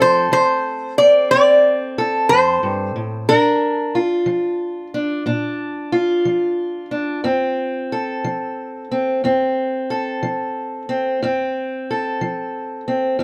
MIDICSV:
0, 0, Header, 1, 3, 480
1, 0, Start_track
1, 0, Key_signature, -1, "major"
1, 0, Tempo, 660066
1, 2397, Time_signature, 12, 3, 24, 8
1, 9626, End_track
2, 0, Start_track
2, 0, Title_t, "Resonator guitar played with a steel bar"
2, 0, Program_c, 0, 25
2, 12, Note_on_c, 0, 72, 90
2, 229, Note_off_c, 0, 72, 0
2, 238, Note_on_c, 0, 72, 93
2, 710, Note_off_c, 0, 72, 0
2, 713, Note_on_c, 0, 74, 85
2, 943, Note_off_c, 0, 74, 0
2, 952, Note_on_c, 0, 74, 99
2, 1664, Note_off_c, 0, 74, 0
2, 1667, Note_on_c, 0, 72, 100
2, 2363, Note_off_c, 0, 72, 0
2, 2390, Note_on_c, 0, 70, 89
2, 2904, Note_off_c, 0, 70, 0
2, 9626, End_track
3, 0, Start_track
3, 0, Title_t, "Steel-string acoustic guitar"
3, 0, Program_c, 1, 25
3, 0, Note_on_c, 1, 53, 59
3, 0, Note_on_c, 1, 57, 66
3, 0, Note_on_c, 1, 60, 63
3, 3, Note_on_c, 1, 69, 59
3, 228, Note_off_c, 1, 53, 0
3, 231, Note_on_c, 1, 53, 62
3, 667, Note_off_c, 1, 53, 0
3, 715, Note_off_c, 1, 60, 0
3, 724, Note_on_c, 1, 60, 56
3, 955, Note_on_c, 1, 41, 68
3, 957, Note_off_c, 1, 60, 0
3, 966, Note_on_c, 1, 60, 55
3, 1388, Note_off_c, 1, 41, 0
3, 1433, Note_off_c, 1, 69, 0
3, 1442, Note_on_c, 1, 69, 71
3, 1671, Note_on_c, 1, 41, 66
3, 1909, Note_off_c, 1, 41, 0
3, 1912, Note_on_c, 1, 43, 64
3, 2148, Note_off_c, 1, 43, 0
3, 2150, Note_on_c, 1, 45, 57
3, 2370, Note_off_c, 1, 69, 0
3, 2373, Note_off_c, 1, 57, 0
3, 2392, Note_off_c, 1, 60, 0
3, 2392, Note_on_c, 1, 46, 79
3, 2394, Note_off_c, 1, 45, 0
3, 2395, Note_on_c, 1, 62, 60
3, 2826, Note_off_c, 1, 46, 0
3, 2873, Note_on_c, 1, 65, 59
3, 3098, Note_on_c, 1, 53, 57
3, 3539, Note_off_c, 1, 53, 0
3, 3585, Note_off_c, 1, 62, 0
3, 3594, Note_on_c, 1, 62, 58
3, 3819, Note_off_c, 1, 62, 0
3, 3824, Note_on_c, 1, 46, 69
3, 3828, Note_on_c, 1, 62, 61
3, 4261, Note_off_c, 1, 46, 0
3, 4305, Note_off_c, 1, 65, 0
3, 4308, Note_on_c, 1, 65, 67
3, 4547, Note_on_c, 1, 53, 67
3, 4983, Note_off_c, 1, 53, 0
3, 5018, Note_off_c, 1, 62, 0
3, 5027, Note_on_c, 1, 62, 50
3, 5242, Note_off_c, 1, 62, 0
3, 5264, Note_on_c, 1, 41, 82
3, 5267, Note_on_c, 1, 60, 65
3, 5701, Note_off_c, 1, 41, 0
3, 5759, Note_off_c, 1, 65, 0
3, 5762, Note_on_c, 1, 69, 60
3, 5995, Note_on_c, 1, 53, 62
3, 6427, Note_off_c, 1, 53, 0
3, 6480, Note_off_c, 1, 60, 0
3, 6483, Note_on_c, 1, 60, 57
3, 6718, Note_on_c, 1, 41, 74
3, 6721, Note_off_c, 1, 60, 0
3, 6724, Note_on_c, 1, 60, 63
3, 7148, Note_off_c, 1, 41, 0
3, 7193, Note_off_c, 1, 69, 0
3, 7202, Note_on_c, 1, 69, 65
3, 7437, Note_on_c, 1, 53, 66
3, 7868, Note_off_c, 1, 53, 0
3, 7910, Note_off_c, 1, 60, 0
3, 7919, Note_on_c, 1, 60, 56
3, 8129, Note_off_c, 1, 69, 0
3, 8156, Note_off_c, 1, 60, 0
3, 8163, Note_on_c, 1, 41, 84
3, 8170, Note_on_c, 1, 60, 65
3, 8591, Note_off_c, 1, 41, 0
3, 8658, Note_on_c, 1, 69, 54
3, 8881, Note_on_c, 1, 53, 65
3, 9309, Note_off_c, 1, 53, 0
3, 9356, Note_off_c, 1, 60, 0
3, 9364, Note_on_c, 1, 60, 53
3, 9590, Note_off_c, 1, 60, 0
3, 9591, Note_on_c, 1, 41, 70
3, 9599, Note_on_c, 1, 60, 61
3, 9626, Note_off_c, 1, 41, 0
3, 9626, Note_off_c, 1, 60, 0
3, 9626, Note_off_c, 1, 69, 0
3, 9626, End_track
0, 0, End_of_file